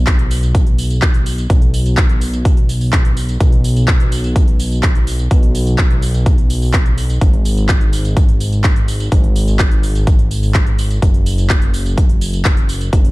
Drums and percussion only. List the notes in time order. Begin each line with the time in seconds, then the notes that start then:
0.07 kick, clap, closed hi-hat, tambourine
0.19 closed hi-hat
0.31 open hi-hat, tambourine
0.43 closed hi-hat, tambourine
0.55 kick, closed hi-hat, tambourine
0.67 closed hi-hat
0.78 open hi-hat, tambourine
0.90 closed hi-hat, tambourine
1.02 kick, clap, closed hi-hat, tambourine
1.14 closed hi-hat
1.26 open hi-hat, tambourine
1.38 closed hi-hat, tambourine
1.50 kick, closed hi-hat, tambourine
1.62 closed hi-hat
1.74 open hi-hat, tambourine
1.86 closed hi-hat, tambourine
1.97 kick, clap, closed hi-hat, tambourine
2.09 closed hi-hat
2.21 open hi-hat, tambourine
2.33 closed hi-hat, tambourine
2.45 kick, closed hi-hat, tambourine
2.57 closed hi-hat
2.69 open hi-hat, tambourine
2.81 open hi-hat, tambourine
2.93 kick, clap, closed hi-hat, tambourine
3.05 closed hi-hat
3.17 open hi-hat, tambourine
3.29 closed hi-hat, tambourine
3.40 kick, closed hi-hat, tambourine
3.52 closed hi-hat
3.64 open hi-hat, tambourine
3.76 closed hi-hat, tambourine
3.88 kick, clap, closed hi-hat, tambourine
4.00 closed hi-hat
4.12 open hi-hat, tambourine
4.24 closed hi-hat, tambourine
4.36 kick, closed hi-hat, tambourine
4.48 closed hi-hat
4.60 open hi-hat, tambourine
4.71 closed hi-hat, tambourine
4.83 kick, clap, closed hi-hat, tambourine
4.95 closed hi-hat
5.07 open hi-hat, tambourine
5.19 closed hi-hat, tambourine
5.31 kick, closed hi-hat, tambourine
5.43 closed hi-hat
5.55 open hi-hat, tambourine
5.67 closed hi-hat, tambourine
5.78 kick, clap, closed hi-hat, tambourine
5.91 closed hi-hat
6.02 open hi-hat, tambourine
6.14 closed hi-hat, tambourine
6.26 kick, closed hi-hat, tambourine
6.38 closed hi-hat
6.50 open hi-hat, tambourine
6.62 open hi-hat, tambourine
6.74 kick, clap, closed hi-hat, tambourine
6.86 closed hi-hat
6.98 open hi-hat, tambourine
7.10 closed hi-hat, tambourine
7.21 kick, closed hi-hat, tambourine
7.33 closed hi-hat
7.45 open hi-hat, tambourine
7.57 closed hi-hat, tambourine
7.69 kick, clap, closed hi-hat, tambourine
7.81 closed hi-hat
7.93 open hi-hat, tambourine
8.05 closed hi-hat, tambourine
8.17 kick, closed hi-hat, tambourine
8.29 closed hi-hat
8.40 open hi-hat, tambourine
8.52 closed hi-hat, tambourine
8.64 kick, clap, closed hi-hat, tambourine
8.76 closed hi-hat
8.88 open hi-hat, tambourine
9.00 closed hi-hat, tambourine
9.12 kick, closed hi-hat, tambourine
9.24 closed hi-hat
9.36 open hi-hat, tambourine
9.48 closed hi-hat, tambourine
9.59 kick, clap, closed hi-hat, tambourine
9.71 closed hi-hat
9.83 open hi-hat, tambourine
9.95 closed hi-hat, tambourine
10.07 kick, closed hi-hat, tambourine
10.19 closed hi-hat
10.31 open hi-hat, tambourine
10.43 open hi-hat, tambourine
10.54 kick, clap, closed hi-hat, tambourine
10.67 closed hi-hat
10.79 open hi-hat, tambourine
10.90 closed hi-hat, tambourine
11.02 kick, closed hi-hat, tambourine
11.14 closed hi-hat
11.26 open hi-hat, tambourine
11.38 closed hi-hat, tambourine
11.50 kick, clap, closed hi-hat, tambourine
11.62 closed hi-hat
11.74 open hi-hat, tambourine
11.86 closed hi-hat, tambourine
11.98 kick, closed hi-hat, tambourine
12.09 closed hi-hat
12.21 open hi-hat, tambourine
12.33 closed hi-hat, tambourine
12.45 kick, clap, closed hi-hat, tambourine
12.57 closed hi-hat
12.69 open hi-hat, tambourine
12.81 closed hi-hat, tambourine
12.93 kick, closed hi-hat, tambourine
13.05 closed hi-hat